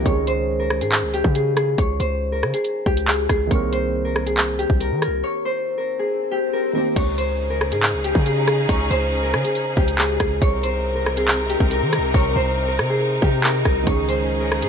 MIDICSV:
0, 0, Header, 1, 7, 480
1, 0, Start_track
1, 0, Tempo, 431655
1, 63, Time_signature, 4, 2, 24, 8
1, 16334, End_track
2, 0, Start_track
2, 0, Title_t, "Harp"
2, 0, Program_c, 0, 46
2, 0, Note_on_c, 0, 67, 85
2, 0, Note_on_c, 0, 70, 74
2, 0, Note_on_c, 0, 72, 79
2, 62, Note_on_c, 0, 73, 96
2, 128, Note_off_c, 0, 72, 0
2, 304, Note_on_c, 0, 72, 81
2, 371, Note_off_c, 0, 73, 0
2, 658, Note_off_c, 0, 70, 0
2, 662, Note_on_c, 0, 70, 67
2, 904, Note_on_c, 0, 68, 74
2, 971, Note_off_c, 0, 67, 0
2, 1264, Note_on_c, 0, 67, 88
2, 1331, Note_off_c, 0, 68, 0
2, 1504, Note_on_c, 0, 68, 78
2, 1571, Note_off_c, 0, 67, 0
2, 1737, Note_off_c, 0, 68, 0
2, 1742, Note_on_c, 0, 68, 82
2, 1984, Note_on_c, 0, 73, 102
2, 2050, Note_off_c, 0, 72, 0
2, 2223, Note_on_c, 0, 72, 80
2, 2290, Note_off_c, 0, 73, 0
2, 2579, Note_off_c, 0, 70, 0
2, 2583, Note_on_c, 0, 70, 67
2, 2818, Note_off_c, 0, 68, 0
2, 2822, Note_on_c, 0, 68, 68
2, 3184, Note_on_c, 0, 67, 82
2, 3250, Note_off_c, 0, 68, 0
2, 3425, Note_on_c, 0, 68, 85
2, 3492, Note_off_c, 0, 67, 0
2, 3659, Note_off_c, 0, 68, 0
2, 3663, Note_on_c, 0, 68, 75
2, 3903, Note_on_c, 0, 73, 105
2, 3969, Note_off_c, 0, 72, 0
2, 4143, Note_on_c, 0, 72, 77
2, 4209, Note_off_c, 0, 73, 0
2, 4497, Note_off_c, 0, 70, 0
2, 4501, Note_on_c, 0, 70, 68
2, 4739, Note_off_c, 0, 68, 0
2, 4743, Note_on_c, 0, 68, 70
2, 5100, Note_on_c, 0, 67, 79
2, 5167, Note_off_c, 0, 68, 0
2, 5339, Note_off_c, 0, 70, 0
2, 5343, Note_on_c, 0, 70, 85
2, 5578, Note_off_c, 0, 70, 0
2, 5583, Note_on_c, 0, 70, 83
2, 5822, Note_on_c, 0, 73, 106
2, 5889, Note_off_c, 0, 72, 0
2, 6063, Note_on_c, 0, 72, 77
2, 6130, Note_off_c, 0, 73, 0
2, 6419, Note_off_c, 0, 70, 0
2, 6424, Note_on_c, 0, 70, 70
2, 6664, Note_on_c, 0, 68, 75
2, 6731, Note_off_c, 0, 67, 0
2, 7022, Note_on_c, 0, 67, 89
2, 7088, Note_off_c, 0, 68, 0
2, 7260, Note_off_c, 0, 70, 0
2, 7264, Note_on_c, 0, 70, 80
2, 7498, Note_off_c, 0, 70, 0
2, 7503, Note_on_c, 0, 70, 75
2, 7742, Note_on_c, 0, 73, 101
2, 7808, Note_off_c, 0, 72, 0
2, 7983, Note_on_c, 0, 72, 82
2, 8049, Note_off_c, 0, 73, 0
2, 8338, Note_off_c, 0, 70, 0
2, 8342, Note_on_c, 0, 70, 68
2, 8585, Note_on_c, 0, 68, 77
2, 8651, Note_off_c, 0, 67, 0
2, 8944, Note_on_c, 0, 67, 88
2, 9011, Note_off_c, 0, 68, 0
2, 9186, Note_on_c, 0, 68, 81
2, 9253, Note_off_c, 0, 67, 0
2, 9419, Note_off_c, 0, 68, 0
2, 9423, Note_on_c, 0, 68, 85
2, 9666, Note_on_c, 0, 73, 101
2, 9733, Note_off_c, 0, 72, 0
2, 9903, Note_on_c, 0, 72, 82
2, 9970, Note_off_c, 0, 73, 0
2, 10259, Note_off_c, 0, 70, 0
2, 10263, Note_on_c, 0, 70, 67
2, 10498, Note_off_c, 0, 68, 0
2, 10503, Note_on_c, 0, 68, 74
2, 10863, Note_on_c, 0, 67, 81
2, 10930, Note_off_c, 0, 68, 0
2, 11104, Note_on_c, 0, 68, 85
2, 11170, Note_off_c, 0, 67, 0
2, 11338, Note_off_c, 0, 68, 0
2, 11342, Note_on_c, 0, 68, 80
2, 11581, Note_on_c, 0, 73, 108
2, 11648, Note_off_c, 0, 72, 0
2, 11823, Note_on_c, 0, 72, 76
2, 11890, Note_off_c, 0, 73, 0
2, 12176, Note_off_c, 0, 70, 0
2, 12181, Note_on_c, 0, 70, 69
2, 12420, Note_off_c, 0, 68, 0
2, 12424, Note_on_c, 0, 68, 75
2, 12780, Note_on_c, 0, 67, 83
2, 12847, Note_off_c, 0, 68, 0
2, 13019, Note_off_c, 0, 70, 0
2, 13024, Note_on_c, 0, 70, 84
2, 13259, Note_off_c, 0, 70, 0
2, 13263, Note_on_c, 0, 70, 86
2, 13501, Note_on_c, 0, 73, 108
2, 13568, Note_off_c, 0, 72, 0
2, 13743, Note_on_c, 0, 72, 80
2, 13810, Note_off_c, 0, 73, 0
2, 14099, Note_off_c, 0, 70, 0
2, 14103, Note_on_c, 0, 70, 67
2, 14344, Note_on_c, 0, 68, 77
2, 14411, Note_off_c, 0, 67, 0
2, 14702, Note_on_c, 0, 67, 90
2, 14769, Note_off_c, 0, 68, 0
2, 14939, Note_off_c, 0, 70, 0
2, 14943, Note_on_c, 0, 70, 81
2, 15177, Note_off_c, 0, 70, 0
2, 15181, Note_on_c, 0, 70, 75
2, 15421, Note_on_c, 0, 73, 100
2, 15487, Note_off_c, 0, 72, 0
2, 15663, Note_on_c, 0, 72, 82
2, 15730, Note_off_c, 0, 73, 0
2, 16018, Note_off_c, 0, 70, 0
2, 16022, Note_on_c, 0, 70, 69
2, 16265, Note_on_c, 0, 68, 75
2, 16331, Note_off_c, 0, 67, 0
2, 16334, Note_off_c, 0, 68, 0
2, 16334, Note_off_c, 0, 70, 0
2, 16334, Note_off_c, 0, 72, 0
2, 16334, End_track
3, 0, Start_track
3, 0, Title_t, "String section"
3, 0, Program_c, 1, 48
3, 7743, Note_on_c, 1, 63, 83
3, 7743, Note_on_c, 1, 68, 94
3, 7744, Note_on_c, 1, 49, 84
3, 7744, Note_on_c, 1, 61, 77
3, 11545, Note_off_c, 1, 49, 0
3, 11545, Note_off_c, 1, 61, 0
3, 11545, Note_off_c, 1, 63, 0
3, 11545, Note_off_c, 1, 68, 0
3, 11583, Note_on_c, 1, 48, 89
3, 11583, Note_on_c, 1, 60, 83
3, 11583, Note_on_c, 1, 63, 82
3, 11583, Note_on_c, 1, 70, 95
3, 15385, Note_off_c, 1, 48, 0
3, 15385, Note_off_c, 1, 60, 0
3, 15385, Note_off_c, 1, 70, 0
3, 15423, Note_on_c, 1, 49, 88
3, 15424, Note_on_c, 1, 61, 80
3, 15424, Note_on_c, 1, 68, 95
3, 16334, Note_off_c, 1, 49, 0
3, 16334, Note_off_c, 1, 61, 0
3, 16334, Note_off_c, 1, 63, 0
3, 16334, Note_off_c, 1, 68, 0
3, 16334, End_track
4, 0, Start_track
4, 0, Title_t, "Grand piano"
4, 0, Program_c, 2, 0
4, 0, Control_c, 2, 64, 127
4, 24, Note_on_c, 2, 51, 68
4, 53, Note_on_c, 2, 56, 68
4, 76, Control_c, 2, 64, 0
4, 83, Note_on_c, 2, 61, 66
4, 112, Note_on_c, 2, 68, 73
4, 305, Control_c, 2, 64, 127
4, 3839, Note_off_c, 2, 51, 0
4, 3854, Note_off_c, 2, 56, 0
4, 3862, Note_on_c, 2, 51, 69
4, 3868, Note_off_c, 2, 61, 0
4, 3883, Note_off_c, 2, 68, 0
4, 3891, Note_on_c, 2, 58, 62
4, 3916, Control_c, 2, 64, 0
4, 3920, Note_on_c, 2, 60, 70
4, 3950, Note_on_c, 2, 70, 76
4, 4110, Control_c, 2, 64, 127
4, 7438, Note_off_c, 2, 51, 0
4, 7453, Note_off_c, 2, 58, 0
4, 7467, Note_off_c, 2, 60, 0
4, 7482, Note_off_c, 2, 70, 0
4, 7485, Note_on_c, 2, 51, 48
4, 7500, Note_on_c, 2, 58, 50
4, 7515, Note_on_c, 2, 60, 49
4, 7529, Note_on_c, 2, 67, 58
4, 7734, Note_off_c, 2, 51, 0
4, 7742, Note_off_c, 2, 58, 0
4, 7749, Note_off_c, 2, 60, 0
4, 7756, Note_off_c, 2, 67, 0
4, 7757, Control_c, 2, 64, 0
4, 7968, Control_c, 2, 64, 127
4, 11594, Control_c, 2, 64, 0
4, 15384, Note_on_c, 2, 51, 68
4, 15413, Note_on_c, 2, 56, 66
4, 15443, Note_on_c, 2, 61, 66
4, 15472, Note_on_c, 2, 68, 76
4, 15622, Control_c, 2, 64, 127
4, 16334, Note_off_c, 2, 51, 0
4, 16334, Note_off_c, 2, 56, 0
4, 16334, Note_off_c, 2, 61, 0
4, 16334, Note_off_c, 2, 68, 0
4, 16334, End_track
5, 0, Start_track
5, 0, Title_t, "808-style bass"
5, 0, Program_c, 3, 38
5, 63, Note_on_c, 3, 37, 103
5, 902, Note_on_c, 3, 44, 100
5, 919, Note_off_c, 3, 37, 0
5, 1142, Note_on_c, 3, 37, 99
5, 1159, Note_off_c, 3, 44, 0
5, 1371, Note_off_c, 3, 37, 0
5, 1383, Note_on_c, 3, 49, 106
5, 1959, Note_off_c, 3, 49, 0
5, 1983, Note_on_c, 3, 37, 112
5, 2213, Note_off_c, 3, 37, 0
5, 2223, Note_on_c, 3, 37, 102
5, 2703, Note_on_c, 3, 49, 100
5, 2720, Note_off_c, 3, 37, 0
5, 2817, Note_off_c, 3, 49, 0
5, 3183, Note_on_c, 3, 37, 105
5, 3644, Note_off_c, 3, 37, 0
5, 3664, Note_on_c, 3, 37, 106
5, 3894, Note_off_c, 3, 37, 0
5, 3903, Note_on_c, 3, 36, 113
5, 5179, Note_off_c, 3, 36, 0
5, 5224, Note_on_c, 3, 36, 110
5, 5464, Note_on_c, 3, 51, 101
5, 5480, Note_off_c, 3, 36, 0
5, 5643, Note_on_c, 3, 36, 105
5, 5660, Note_off_c, 3, 51, 0
5, 5814, Note_off_c, 3, 36, 0
5, 7744, Note_on_c, 3, 37, 104
5, 8584, Note_on_c, 3, 44, 101
5, 8600, Note_off_c, 3, 37, 0
5, 8823, Note_on_c, 3, 37, 101
5, 8840, Note_off_c, 3, 44, 0
5, 9051, Note_off_c, 3, 37, 0
5, 9064, Note_on_c, 3, 49, 107
5, 9640, Note_off_c, 3, 49, 0
5, 9664, Note_on_c, 3, 37, 109
5, 9894, Note_off_c, 3, 37, 0
5, 9903, Note_on_c, 3, 37, 104
5, 10383, Note_on_c, 3, 49, 99
5, 10399, Note_off_c, 3, 37, 0
5, 10497, Note_off_c, 3, 49, 0
5, 10864, Note_on_c, 3, 37, 102
5, 11324, Note_off_c, 3, 37, 0
5, 11344, Note_on_c, 3, 37, 105
5, 11574, Note_off_c, 3, 37, 0
5, 11583, Note_on_c, 3, 36, 114
5, 12859, Note_off_c, 3, 36, 0
5, 12904, Note_on_c, 3, 36, 111
5, 13144, Note_on_c, 3, 51, 104
5, 13160, Note_off_c, 3, 36, 0
5, 13323, Note_on_c, 3, 36, 101
5, 13340, Note_off_c, 3, 51, 0
5, 13494, Note_off_c, 3, 36, 0
5, 13503, Note_on_c, 3, 36, 114
5, 13733, Note_off_c, 3, 36, 0
5, 13743, Note_on_c, 3, 36, 106
5, 14224, Note_on_c, 3, 48, 101
5, 14240, Note_off_c, 3, 36, 0
5, 14680, Note_off_c, 3, 48, 0
5, 14703, Note_on_c, 3, 48, 109
5, 15164, Note_off_c, 3, 48, 0
5, 15183, Note_on_c, 3, 36, 108
5, 15414, Note_off_c, 3, 36, 0
5, 15422, Note_on_c, 3, 37, 106
5, 16263, Note_on_c, 3, 44, 99
5, 16280, Note_off_c, 3, 37, 0
5, 16334, Note_off_c, 3, 44, 0
5, 16334, End_track
6, 0, Start_track
6, 0, Title_t, "Swell"
6, 0, Program_c, 4, 103
6, 5824, Note_on_c, 4, 60, 87
6, 7743, Note_off_c, 4, 60, 0
6, 16334, End_track
7, 0, Start_track
7, 0, Title_t, "Drums"
7, 63, Note_on_c, 9, 36, 108
7, 63, Note_on_c, 9, 42, 73
7, 174, Note_off_c, 9, 36, 0
7, 174, Note_off_c, 9, 42, 0
7, 304, Note_on_c, 9, 42, 75
7, 415, Note_off_c, 9, 42, 0
7, 783, Note_on_c, 9, 37, 97
7, 894, Note_off_c, 9, 37, 0
7, 903, Note_on_c, 9, 42, 74
7, 1014, Note_off_c, 9, 42, 0
7, 1021, Note_on_c, 9, 42, 62
7, 1023, Note_on_c, 9, 39, 118
7, 1132, Note_off_c, 9, 42, 0
7, 1134, Note_off_c, 9, 39, 0
7, 1264, Note_on_c, 9, 42, 67
7, 1375, Note_off_c, 9, 42, 0
7, 1383, Note_on_c, 9, 36, 94
7, 1495, Note_off_c, 9, 36, 0
7, 1503, Note_on_c, 9, 42, 77
7, 1614, Note_off_c, 9, 42, 0
7, 1743, Note_on_c, 9, 42, 85
7, 1744, Note_on_c, 9, 37, 104
7, 1854, Note_off_c, 9, 42, 0
7, 1855, Note_off_c, 9, 37, 0
7, 1983, Note_on_c, 9, 36, 108
7, 1983, Note_on_c, 9, 42, 73
7, 2094, Note_off_c, 9, 36, 0
7, 2094, Note_off_c, 9, 42, 0
7, 2223, Note_on_c, 9, 42, 76
7, 2334, Note_off_c, 9, 42, 0
7, 2703, Note_on_c, 9, 37, 97
7, 2814, Note_off_c, 9, 37, 0
7, 2823, Note_on_c, 9, 42, 75
7, 2934, Note_off_c, 9, 42, 0
7, 2941, Note_on_c, 9, 42, 70
7, 3052, Note_off_c, 9, 42, 0
7, 3183, Note_on_c, 9, 36, 102
7, 3294, Note_off_c, 9, 36, 0
7, 3304, Note_on_c, 9, 42, 76
7, 3416, Note_off_c, 9, 42, 0
7, 3423, Note_on_c, 9, 39, 109
7, 3534, Note_off_c, 9, 39, 0
7, 3662, Note_on_c, 9, 42, 78
7, 3663, Note_on_c, 9, 37, 104
7, 3664, Note_on_c, 9, 36, 92
7, 3773, Note_off_c, 9, 42, 0
7, 3774, Note_off_c, 9, 37, 0
7, 3775, Note_off_c, 9, 36, 0
7, 3903, Note_on_c, 9, 36, 111
7, 3903, Note_on_c, 9, 42, 76
7, 4014, Note_off_c, 9, 36, 0
7, 4014, Note_off_c, 9, 42, 0
7, 4144, Note_on_c, 9, 42, 73
7, 4255, Note_off_c, 9, 42, 0
7, 4624, Note_on_c, 9, 37, 99
7, 4735, Note_off_c, 9, 37, 0
7, 4744, Note_on_c, 9, 42, 75
7, 4855, Note_off_c, 9, 42, 0
7, 4861, Note_on_c, 9, 42, 64
7, 4864, Note_on_c, 9, 39, 123
7, 4973, Note_off_c, 9, 42, 0
7, 4975, Note_off_c, 9, 39, 0
7, 5104, Note_on_c, 9, 42, 68
7, 5216, Note_off_c, 9, 42, 0
7, 5224, Note_on_c, 9, 36, 98
7, 5335, Note_off_c, 9, 36, 0
7, 5343, Note_on_c, 9, 42, 76
7, 5454, Note_off_c, 9, 42, 0
7, 5582, Note_on_c, 9, 42, 82
7, 5583, Note_on_c, 9, 37, 100
7, 5694, Note_off_c, 9, 42, 0
7, 5695, Note_off_c, 9, 37, 0
7, 7743, Note_on_c, 9, 36, 110
7, 7743, Note_on_c, 9, 42, 74
7, 7743, Note_on_c, 9, 49, 105
7, 7854, Note_off_c, 9, 36, 0
7, 7854, Note_off_c, 9, 49, 0
7, 7855, Note_off_c, 9, 42, 0
7, 7984, Note_on_c, 9, 42, 75
7, 8095, Note_off_c, 9, 42, 0
7, 8464, Note_on_c, 9, 37, 100
7, 8575, Note_off_c, 9, 37, 0
7, 8584, Note_on_c, 9, 42, 76
7, 8695, Note_off_c, 9, 42, 0
7, 8703, Note_on_c, 9, 42, 64
7, 8705, Note_on_c, 9, 39, 125
7, 8814, Note_off_c, 9, 42, 0
7, 8816, Note_off_c, 9, 39, 0
7, 8945, Note_on_c, 9, 42, 66
7, 9056, Note_off_c, 9, 42, 0
7, 9064, Note_on_c, 9, 36, 98
7, 9175, Note_off_c, 9, 36, 0
7, 9185, Note_on_c, 9, 42, 78
7, 9296, Note_off_c, 9, 42, 0
7, 9424, Note_on_c, 9, 42, 86
7, 9425, Note_on_c, 9, 37, 104
7, 9535, Note_off_c, 9, 42, 0
7, 9536, Note_off_c, 9, 37, 0
7, 9664, Note_on_c, 9, 36, 112
7, 9664, Note_on_c, 9, 42, 76
7, 9775, Note_off_c, 9, 36, 0
7, 9776, Note_off_c, 9, 42, 0
7, 9905, Note_on_c, 9, 42, 76
7, 10016, Note_off_c, 9, 42, 0
7, 10384, Note_on_c, 9, 37, 101
7, 10495, Note_off_c, 9, 37, 0
7, 10504, Note_on_c, 9, 42, 77
7, 10615, Note_off_c, 9, 42, 0
7, 10621, Note_on_c, 9, 42, 73
7, 10733, Note_off_c, 9, 42, 0
7, 10863, Note_on_c, 9, 36, 101
7, 10975, Note_off_c, 9, 36, 0
7, 10985, Note_on_c, 9, 42, 80
7, 11096, Note_off_c, 9, 42, 0
7, 11103, Note_on_c, 9, 39, 112
7, 11214, Note_off_c, 9, 39, 0
7, 11342, Note_on_c, 9, 42, 78
7, 11343, Note_on_c, 9, 37, 102
7, 11344, Note_on_c, 9, 36, 94
7, 11454, Note_off_c, 9, 42, 0
7, 11455, Note_off_c, 9, 36, 0
7, 11455, Note_off_c, 9, 37, 0
7, 11583, Note_on_c, 9, 36, 113
7, 11583, Note_on_c, 9, 42, 74
7, 11694, Note_off_c, 9, 36, 0
7, 11694, Note_off_c, 9, 42, 0
7, 11824, Note_on_c, 9, 42, 79
7, 11935, Note_off_c, 9, 42, 0
7, 12303, Note_on_c, 9, 37, 99
7, 12415, Note_off_c, 9, 37, 0
7, 12423, Note_on_c, 9, 42, 77
7, 12535, Note_off_c, 9, 42, 0
7, 12541, Note_on_c, 9, 42, 67
7, 12543, Note_on_c, 9, 39, 124
7, 12652, Note_off_c, 9, 42, 0
7, 12654, Note_off_c, 9, 39, 0
7, 12784, Note_on_c, 9, 42, 69
7, 12895, Note_off_c, 9, 42, 0
7, 12904, Note_on_c, 9, 36, 97
7, 13015, Note_off_c, 9, 36, 0
7, 13023, Note_on_c, 9, 42, 80
7, 13134, Note_off_c, 9, 42, 0
7, 13262, Note_on_c, 9, 42, 87
7, 13263, Note_on_c, 9, 37, 101
7, 13373, Note_off_c, 9, 42, 0
7, 13374, Note_off_c, 9, 37, 0
7, 13503, Note_on_c, 9, 36, 116
7, 13614, Note_off_c, 9, 36, 0
7, 14223, Note_on_c, 9, 37, 103
7, 14334, Note_off_c, 9, 37, 0
7, 14703, Note_on_c, 9, 36, 106
7, 14814, Note_off_c, 9, 36, 0
7, 14942, Note_on_c, 9, 39, 110
7, 15053, Note_off_c, 9, 39, 0
7, 15183, Note_on_c, 9, 36, 98
7, 15183, Note_on_c, 9, 37, 101
7, 15294, Note_off_c, 9, 37, 0
7, 15295, Note_off_c, 9, 36, 0
7, 15423, Note_on_c, 9, 36, 113
7, 15423, Note_on_c, 9, 42, 74
7, 15534, Note_off_c, 9, 36, 0
7, 15534, Note_off_c, 9, 42, 0
7, 15663, Note_on_c, 9, 42, 76
7, 15774, Note_off_c, 9, 42, 0
7, 16143, Note_on_c, 9, 37, 102
7, 16254, Note_off_c, 9, 37, 0
7, 16263, Note_on_c, 9, 42, 77
7, 16334, Note_off_c, 9, 42, 0
7, 16334, End_track
0, 0, End_of_file